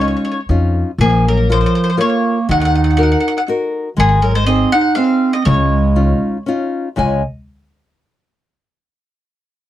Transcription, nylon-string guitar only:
0.00 0.38 C#4 medium
0.00 0.39 D#4 soft
0.00 0.39 F4 soft
0.49 0.89 C#4 medium
0.49 0.89 D#4 soft
0.49 0.90 F4 medium
1.01 1.48 A#3 medium
1.49 1.89 F4 soft
1.49 1.89 A#4 soft
1.49 1.90 C#5 soft
1.97 2.38 F4 medium
1.97 2.38 A#4 soft
1.97 2.38 C#5 medium
2.49 2.97 D#3 medium
2.98 3.38 D#4 soft
2.98 3.38 F#4 soft
2.98 3.38 A#4 medium
3.48 3.88 D#4 medium
3.48 3.88 F#4 soft
3.48 3.88 A#4 medium
3.97 4.45 G#3 medium
4.48 4.87 D#4 soft
4.48 4.88 G#4 soft
4.48 4.88 C5 medium
4.96 5.37 D#4 medium
4.96 5.36 G#4 soft
4.96 5.37 C5 soft
5.46 5.95 C#3 medium
5.96 6.36 C#4 soft
5.96 6.37 D#4 soft
5.96 6.37 F4 medium
6.46 6.87 C#4 medium
6.46 6.88 D#4 soft
6.46 6.88 F4 medium
6.96 7.21 C#3 medium
6.96 7.21 G#3 medium
6.96 7.21 F4 soft
6.96 7.22 C#5 soft
6.96 7.21 D#5 medium
6.96 7.22 G#5 medium

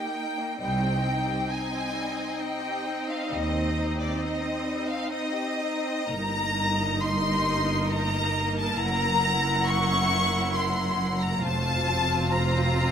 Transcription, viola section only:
0.00 0.59 A#3 medium
0.00 0.59 D#4 medium
0.61 6.06 C4 medium
0.61 6.05 D#4 medium
6.09 11.39 A#3 medium
6.09 8.73 D#4 medium
8.77 11.39 E4 medium
11.44 12.91 C4 medium
11.44 12.91 F4 medium

